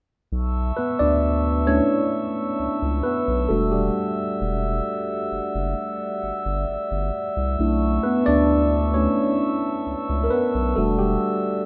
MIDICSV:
0, 0, Header, 1, 4, 480
1, 0, Start_track
1, 0, Key_signature, 2, "minor"
1, 0, Tempo, 909091
1, 167, Time_signature, 4, 2, 24, 8
1, 6155, End_track
2, 0, Start_track
2, 0, Title_t, "Glass harmonica"
2, 0, Program_c, 0, 92
2, 166, Note_on_c, 0, 81, 61
2, 167, Note_on_c, 0, 88, 72
2, 168, Note_on_c, 0, 76, 66
2, 168, Note_on_c, 0, 85, 59
2, 1830, Note_off_c, 0, 81, 0
2, 1831, Note_off_c, 0, 85, 0
2, 1843, Note_on_c, 0, 74, 59
2, 1845, Note_on_c, 0, 78, 58
2, 3984, Note_off_c, 0, 74, 0
2, 3985, Note_off_c, 0, 78, 0
2, 3987, Note_off_c, 0, 76, 0
2, 4005, Note_on_c, 0, 81, 63
2, 4006, Note_on_c, 0, 76, 65
2, 4006, Note_on_c, 0, 85, 65
2, 5669, Note_off_c, 0, 81, 0
2, 5670, Note_off_c, 0, 85, 0
2, 5686, Note_on_c, 0, 74, 58
2, 5686, Note_on_c, 0, 78, 57
2, 6155, Note_off_c, 0, 74, 0
2, 6155, Note_off_c, 0, 76, 0
2, 6155, Note_off_c, 0, 78, 0
2, 6155, Note_off_c, 0, 88, 0
2, 6155, End_track
3, 0, Start_track
3, 0, Title_t, "Tine electric piano"
3, 0, Program_c, 1, 4
3, 264, Control_c, 1, 64, 127
3, 404, Note_on_c, 1, 71, 92
3, 414, Note_on_c, 1, 59, 72
3, 517, Note_off_c, 1, 71, 0
3, 523, Note_off_c, 1, 59, 0
3, 524, Note_on_c, 1, 74, 100
3, 534, Note_on_c, 1, 62, 75
3, 865, Note_off_c, 1, 74, 0
3, 870, Note_off_c, 1, 62, 0
3, 882, Note_on_c, 1, 73, 99
3, 885, Note_on_c, 1, 57, 53
3, 888, Note_on_c, 1, 61, 69
3, 890, Note_on_c, 1, 62, 47
3, 892, Note_on_c, 1, 64, 53
3, 1584, Note_off_c, 1, 73, 0
3, 1585, Note_off_c, 1, 57, 0
3, 1588, Note_off_c, 1, 62, 0
3, 1589, Note_off_c, 1, 61, 0
3, 1589, Note_off_c, 1, 64, 0
3, 1602, Note_on_c, 1, 71, 85
3, 1613, Note_on_c, 1, 59, 67
3, 1828, Note_off_c, 1, 71, 0
3, 1834, Note_off_c, 1, 59, 0
3, 1841, Note_on_c, 1, 69, 80
3, 1845, Note_on_c, 1, 55, 52
3, 1848, Note_on_c, 1, 62, 49
3, 1851, Note_on_c, 1, 66, 57
3, 1852, Note_on_c, 1, 57, 65
3, 1854, Control_c, 1, 64, 0
3, 1932, Control_c, 1, 64, 127
3, 1961, Note_on_c, 1, 67, 78
3, 1962, Note_off_c, 1, 57, 0
3, 1966, Note_off_c, 1, 55, 0
3, 1968, Note_off_c, 1, 69, 0
3, 1973, Note_on_c, 1, 55, 57
3, 2663, Note_off_c, 1, 67, 0
3, 2669, Note_off_c, 1, 55, 0
3, 3747, Note_off_c, 1, 62, 0
3, 3748, Note_off_c, 1, 66, 0
3, 4006, Note_on_c, 1, 57, 56
3, 4008, Note_on_c, 1, 61, 48
3, 4011, Note_on_c, 1, 62, 51
3, 4013, Note_on_c, 1, 64, 58
3, 4015, Control_c, 1, 64, 0
3, 4104, Control_c, 1, 64, 127
3, 4241, Note_on_c, 1, 71, 89
3, 4253, Note_on_c, 1, 59, 74
3, 4326, Note_off_c, 1, 57, 0
3, 4327, Note_off_c, 1, 61, 0
3, 4328, Note_off_c, 1, 62, 0
3, 4330, Note_off_c, 1, 64, 0
3, 4361, Note_on_c, 1, 74, 101
3, 4362, Note_off_c, 1, 59, 0
3, 4368, Note_off_c, 1, 71, 0
3, 4374, Note_on_c, 1, 62, 78
3, 4709, Note_off_c, 1, 62, 0
3, 4720, Note_on_c, 1, 73, 93
3, 4726, Note_on_c, 1, 57, 46
3, 4728, Note_on_c, 1, 61, 77
3, 4729, Note_on_c, 1, 62, 43
3, 4732, Note_on_c, 1, 64, 49
3, 4735, Note_off_c, 1, 74, 0
3, 4946, Note_off_c, 1, 57, 0
3, 4947, Note_off_c, 1, 62, 0
3, 4948, Note_off_c, 1, 64, 0
3, 5386, Note_off_c, 1, 73, 0
3, 5392, Note_off_c, 1, 61, 0
3, 5405, Note_on_c, 1, 70, 64
3, 5441, Note_on_c, 1, 71, 93
3, 5445, Note_off_c, 1, 70, 0
3, 5452, Note_on_c, 1, 59, 71
3, 5673, Note_off_c, 1, 59, 0
3, 5681, Note_on_c, 1, 69, 83
3, 5684, Note_on_c, 1, 55, 56
3, 5687, Note_on_c, 1, 62, 52
3, 5691, Note_off_c, 1, 71, 0
3, 5691, Note_on_c, 1, 66, 62
3, 5692, Note_on_c, 1, 57, 64
3, 5693, Control_c, 1, 64, 0
3, 5798, Control_c, 1, 64, 127
3, 5801, Note_off_c, 1, 57, 0
3, 5801, Note_on_c, 1, 67, 77
3, 5805, Note_off_c, 1, 55, 0
3, 5808, Note_off_c, 1, 69, 0
3, 5811, Note_on_c, 1, 55, 61
3, 6155, Note_off_c, 1, 55, 0
3, 6155, Note_off_c, 1, 62, 0
3, 6155, Note_off_c, 1, 66, 0
3, 6155, Note_off_c, 1, 67, 0
3, 6155, End_track
4, 0, Start_track
4, 0, Title_t, "Sub bass"
4, 0, Program_c, 2, 38
4, 168, Note_on_c, 2, 35, 111
4, 381, Note_off_c, 2, 35, 0
4, 529, Note_on_c, 2, 38, 91
4, 955, Note_off_c, 2, 38, 0
4, 1370, Note_on_c, 2, 37, 44
4, 1417, Note_off_c, 2, 37, 0
4, 1489, Note_on_c, 2, 37, 92
4, 1595, Note_off_c, 2, 37, 0
4, 1729, Note_on_c, 2, 35, 83
4, 1835, Note_off_c, 2, 35, 0
4, 1847, Note_on_c, 2, 28, 104
4, 2061, Note_off_c, 2, 28, 0
4, 2328, Note_on_c, 2, 28, 104
4, 2541, Note_off_c, 2, 28, 0
4, 2807, Note_on_c, 2, 30, 47
4, 2855, Note_off_c, 2, 30, 0
4, 2929, Note_on_c, 2, 30, 85
4, 3035, Note_off_c, 2, 30, 0
4, 3289, Note_on_c, 2, 31, 46
4, 3337, Note_off_c, 2, 31, 0
4, 3408, Note_on_c, 2, 31, 87
4, 3514, Note_off_c, 2, 31, 0
4, 3529, Note_on_c, 2, 31, 47
4, 3577, Note_off_c, 2, 31, 0
4, 3649, Note_on_c, 2, 31, 86
4, 3755, Note_off_c, 2, 31, 0
4, 3889, Note_on_c, 2, 36, 88
4, 3995, Note_off_c, 2, 36, 0
4, 4008, Note_on_c, 2, 35, 109
4, 4221, Note_off_c, 2, 35, 0
4, 4369, Note_on_c, 2, 38, 91
4, 4795, Note_off_c, 2, 38, 0
4, 5209, Note_on_c, 2, 37, 46
4, 5256, Note_off_c, 2, 37, 0
4, 5329, Note_on_c, 2, 37, 92
4, 5435, Note_off_c, 2, 37, 0
4, 5568, Note_on_c, 2, 35, 82
4, 5674, Note_off_c, 2, 35, 0
4, 5688, Note_on_c, 2, 28, 103
4, 5901, Note_off_c, 2, 28, 0
4, 6155, End_track
0, 0, End_of_file